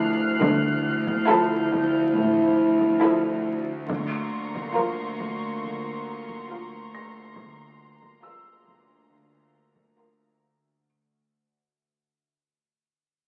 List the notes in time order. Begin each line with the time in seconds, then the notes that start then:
Already playing: D2 F3 E4 A4 F6 F#6 C7
0.40 D2 D3 F3 E4, taiko
1.07 taiko
1.15 G6
1.28 F3 E4 A4
1.72 taiko
2.15 A1 A2
2.81 taiko
3.02 F3 E4 A4
3.89 D2 D3 A#3 F4 A#5 C6 C#6, taiko
4.55 taiko
4.76 F3 F4 A#4
5.20 taiko
5.63 D2 D3
6.29 taiko
6.50 F3 F4 A#4
6.95 A#6
7.36 D2 D3 A#3 F4, taiko
7.40 D2
7.46 C6
8.02 taiko
8.23 F3 F4 A#4 E6
8.67 taiko
9.11 D2 D3
9.76 taiko
9.98 F3 F4 A#4